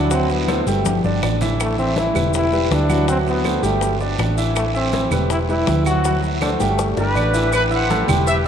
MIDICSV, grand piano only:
0, 0, Header, 1, 2, 480
1, 0, Start_track
1, 0, Key_signature, 1, "major"
1, 0, Tempo, 370828
1, 142, Time_signature, 4, 2, 24, 8
1, 10973, End_track
2, 0, Start_track
2, 0, Title_t, "Grand piano"
2, 0, Program_c, 0, 0
2, 129, Note_on_c, 0, 54, 81
2, 137, Note_on_c, 0, 66, 82
2, 142, Note_on_c, 0, 78, 80
2, 528, Note_off_c, 0, 54, 0
2, 533, Note_off_c, 0, 66, 0
2, 537, Note_off_c, 0, 78, 0
2, 620, Note_on_c, 0, 57, 66
2, 620, Note_on_c, 0, 69, 68
2, 625, Note_on_c, 0, 72, 73
2, 818, Note_off_c, 0, 57, 0
2, 818, Note_off_c, 0, 69, 0
2, 821, Note_off_c, 0, 72, 0
2, 867, Note_on_c, 0, 55, 76
2, 873, Note_on_c, 0, 67, 73
2, 875, Note_on_c, 0, 79, 74
2, 1259, Note_off_c, 0, 55, 0
2, 1263, Note_off_c, 0, 67, 0
2, 1264, Note_off_c, 0, 79, 0
2, 1355, Note_on_c, 0, 62, 72
2, 1355, Note_on_c, 0, 74, 73
2, 1547, Note_off_c, 0, 62, 0
2, 1547, Note_off_c, 0, 74, 0
2, 1594, Note_on_c, 0, 74, 67
2, 1596, Note_on_c, 0, 62, 67
2, 1786, Note_off_c, 0, 74, 0
2, 1788, Note_off_c, 0, 62, 0
2, 1831, Note_on_c, 0, 64, 80
2, 1832, Note_on_c, 0, 52, 81
2, 1837, Note_on_c, 0, 76, 81
2, 2222, Note_off_c, 0, 52, 0
2, 2222, Note_off_c, 0, 64, 0
2, 2226, Note_off_c, 0, 76, 0
2, 2309, Note_on_c, 0, 64, 77
2, 2311, Note_on_c, 0, 52, 83
2, 2314, Note_on_c, 0, 76, 83
2, 2701, Note_off_c, 0, 64, 0
2, 2702, Note_off_c, 0, 52, 0
2, 2704, Note_off_c, 0, 76, 0
2, 2773, Note_on_c, 0, 55, 71
2, 2777, Note_on_c, 0, 67, 66
2, 2784, Note_on_c, 0, 71, 70
2, 3171, Note_off_c, 0, 55, 0
2, 3174, Note_off_c, 0, 67, 0
2, 3178, Note_off_c, 0, 71, 0
2, 3263, Note_on_c, 0, 55, 73
2, 3267, Note_on_c, 0, 67, 70
2, 3274, Note_on_c, 0, 71, 73
2, 3657, Note_off_c, 0, 55, 0
2, 3660, Note_off_c, 0, 67, 0
2, 3664, Note_off_c, 0, 71, 0
2, 3750, Note_on_c, 0, 54, 83
2, 3753, Note_on_c, 0, 78, 85
2, 3756, Note_on_c, 0, 66, 88
2, 3945, Note_off_c, 0, 54, 0
2, 3946, Note_off_c, 0, 78, 0
2, 3948, Note_off_c, 0, 66, 0
2, 3987, Note_on_c, 0, 54, 80
2, 3990, Note_on_c, 0, 66, 77
2, 3993, Note_on_c, 0, 78, 80
2, 4380, Note_off_c, 0, 54, 0
2, 4382, Note_off_c, 0, 66, 0
2, 4383, Note_off_c, 0, 78, 0
2, 4464, Note_on_c, 0, 57, 68
2, 4465, Note_on_c, 0, 72, 73
2, 4467, Note_on_c, 0, 69, 70
2, 4661, Note_off_c, 0, 57, 0
2, 4662, Note_off_c, 0, 72, 0
2, 4663, Note_off_c, 0, 69, 0
2, 4688, Note_on_c, 0, 55, 80
2, 4696, Note_on_c, 0, 67, 83
2, 4697, Note_on_c, 0, 79, 78
2, 5088, Note_off_c, 0, 55, 0
2, 5093, Note_off_c, 0, 67, 0
2, 5094, Note_off_c, 0, 79, 0
2, 5185, Note_on_c, 0, 62, 70
2, 5186, Note_on_c, 0, 74, 78
2, 5382, Note_off_c, 0, 62, 0
2, 5382, Note_off_c, 0, 74, 0
2, 5426, Note_on_c, 0, 62, 67
2, 5428, Note_on_c, 0, 74, 65
2, 5622, Note_off_c, 0, 62, 0
2, 5624, Note_off_c, 0, 74, 0
2, 5660, Note_on_c, 0, 52, 84
2, 5662, Note_on_c, 0, 64, 82
2, 5668, Note_on_c, 0, 76, 79
2, 6056, Note_off_c, 0, 52, 0
2, 6057, Note_off_c, 0, 64, 0
2, 6060, Note_off_c, 0, 76, 0
2, 6138, Note_on_c, 0, 52, 80
2, 6143, Note_on_c, 0, 64, 81
2, 6146, Note_on_c, 0, 76, 80
2, 6535, Note_off_c, 0, 52, 0
2, 6537, Note_off_c, 0, 64, 0
2, 6539, Note_off_c, 0, 76, 0
2, 6615, Note_on_c, 0, 55, 68
2, 6624, Note_on_c, 0, 67, 70
2, 6631, Note_on_c, 0, 71, 74
2, 7012, Note_off_c, 0, 55, 0
2, 7018, Note_off_c, 0, 67, 0
2, 7022, Note_off_c, 0, 71, 0
2, 7109, Note_on_c, 0, 55, 72
2, 7114, Note_on_c, 0, 67, 70
2, 7118, Note_on_c, 0, 71, 75
2, 7501, Note_off_c, 0, 55, 0
2, 7504, Note_off_c, 0, 67, 0
2, 7506, Note_off_c, 0, 71, 0
2, 7581, Note_on_c, 0, 54, 90
2, 7588, Note_on_c, 0, 66, 85
2, 7593, Note_on_c, 0, 78, 85
2, 7779, Note_off_c, 0, 54, 0
2, 7783, Note_off_c, 0, 66, 0
2, 7787, Note_off_c, 0, 78, 0
2, 7835, Note_on_c, 0, 54, 79
2, 7839, Note_on_c, 0, 66, 82
2, 7842, Note_on_c, 0, 78, 81
2, 8224, Note_off_c, 0, 54, 0
2, 8227, Note_off_c, 0, 66, 0
2, 8229, Note_off_c, 0, 78, 0
2, 8312, Note_on_c, 0, 57, 73
2, 8315, Note_on_c, 0, 72, 71
2, 8317, Note_on_c, 0, 69, 70
2, 8506, Note_off_c, 0, 57, 0
2, 8507, Note_off_c, 0, 72, 0
2, 8509, Note_off_c, 0, 69, 0
2, 8545, Note_on_c, 0, 55, 80
2, 8548, Note_on_c, 0, 67, 84
2, 8548, Note_on_c, 0, 79, 77
2, 8938, Note_off_c, 0, 55, 0
2, 8940, Note_off_c, 0, 67, 0
2, 8940, Note_off_c, 0, 79, 0
2, 9023, Note_on_c, 0, 62, 72
2, 9030, Note_on_c, 0, 74, 72
2, 9220, Note_off_c, 0, 62, 0
2, 9224, Note_off_c, 0, 74, 0
2, 9259, Note_on_c, 0, 74, 72
2, 9260, Note_on_c, 0, 62, 70
2, 9458, Note_off_c, 0, 62, 0
2, 9458, Note_off_c, 0, 74, 0
2, 9492, Note_on_c, 0, 52, 86
2, 9495, Note_on_c, 0, 64, 83
2, 9502, Note_on_c, 0, 76, 82
2, 9694, Note_off_c, 0, 52, 0
2, 9695, Note_off_c, 0, 64, 0
2, 9700, Note_off_c, 0, 76, 0
2, 9974, Note_on_c, 0, 64, 75
2, 9981, Note_on_c, 0, 76, 77
2, 9983, Note_on_c, 0, 88, 73
2, 10174, Note_off_c, 0, 64, 0
2, 10178, Note_off_c, 0, 76, 0
2, 10180, Note_off_c, 0, 88, 0
2, 10220, Note_on_c, 0, 57, 77
2, 10223, Note_on_c, 0, 69, 83
2, 10233, Note_on_c, 0, 81, 77
2, 10418, Note_off_c, 0, 57, 0
2, 10420, Note_off_c, 0, 69, 0
2, 10426, Note_off_c, 0, 81, 0
2, 10452, Note_on_c, 0, 55, 82
2, 10456, Note_on_c, 0, 67, 75
2, 10462, Note_on_c, 0, 79, 73
2, 10850, Note_off_c, 0, 55, 0
2, 10852, Note_off_c, 0, 67, 0
2, 10856, Note_off_c, 0, 79, 0
2, 10973, End_track
0, 0, End_of_file